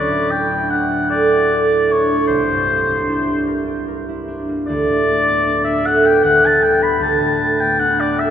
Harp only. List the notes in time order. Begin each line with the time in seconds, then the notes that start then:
Already playing: D2 F#3 D4 E4 F#4
0.10 A2
0.30 A3
0.51 D4
0.69 E4
0.91 F#4
1.10 A4
1.29 F#4
1.50 A4
1.71 E4
1.90 D4
2.11 A3
2.29 C2
2.49 G2
2.69 A#3
2.88 D4
3.09 E4
3.27 G4
3.47 A#4
3.68 G4
3.88 A#4
4.09 E4
4.28 D4
4.49 A#3
4.69 D2
4.88 A2
5.08 A3
5.27 B3
5.47 D4
5.66 F#4
5.86 A4
6.04 B4
6.24 D2
6.44 D3
6.62 G3
6.81 B3
7.00 D2
7.20 A2
7.39 A3
7.59 B3
7.79 D4
7.99 F#4
8.19 A4